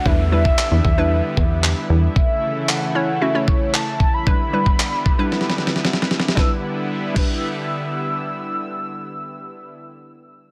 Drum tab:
CC |------------------------------------------------|------------------------------------------------|------------------------------------------------|------------------x-----------------------------|
CP |------------x-----------------------x-----------|------------x-----------------------x-----------|------------x-----------------------------------|------------------------------------------------|
SD |------------------------------------------------|------------------------------------------------|------------------------o-o-o-o-o-o-o-o-o-o-o-o-|o-----------------------------------------------|
BD |o--------o--------o-----------o-----------------|o-----------------------------o-----------o-----|o--------o--------o-----------------------------|o-----------------o-----------------------------|

CC |------------------------------------------------|
CP |------------------------------------------------|
SD |------------------------------------------------|
BD |------------------------------------------------|